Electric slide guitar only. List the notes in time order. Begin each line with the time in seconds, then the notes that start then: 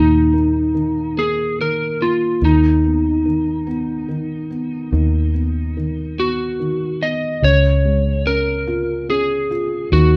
Already playing: D#4
1.19 G#4
1.61 A#4
2.02 F4
2.45 D#4
6.20 F#4
7.03 D#5
7.44 C#5
8.27 A#4
9.10 G#4
9.93 F#4